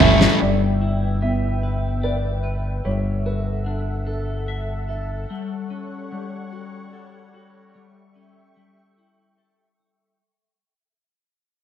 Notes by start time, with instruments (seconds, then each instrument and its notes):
Already playing: clean electric guitar G3 E4, distorted electric guitar A3, analog synth pad A4 E5 G5 C#6
0.00 fm bass G1, clean electric guitar C#4, distorted electric guitar C#4 E4 A4, felt piano E5, floor tom
0.21 snare
0.40 fm bass G1, clean electric guitar G3, analog synth pad B4 E5 G5, felt piano D5
0.81 clean electric guitar E4
1.22 clean electric guitar B3, felt piano E5
1.63 clean electric guitar B4
2.03 felt piano B4, clean electric guitar D5
2.43 clean electric guitar B4
2.84 fm bass G1, clean electric guitar G3, analog synth pad A4 E5 F#5, felt piano C#5
3.26 clean electric guitar F#4, felt piano B4
3.66 clean electric guitar D4
4.07 clean electric guitar A4, felt piano A4
4.48 clean electric guitar E5
4.89 clean electric guitar A4, felt piano E5
5.29 analog synth pad G3 C#5 F#5 C#6, clean electric guitar G3
5.70 clean electric guitar C#4
6.12 clean electric guitar G3
6.52 clean electric guitar F#4
6.93 clean electric guitar A4
7.34 clean electric guitar F#4
7.75 clean electric guitar G3, analog synth pad E5 G5 C#6
8.16 clean electric guitar C#4
8.56 clean electric guitar G3
8.98 clean electric guitar E4
9.38 clean electric guitar A4
9.80 clean electric guitar E4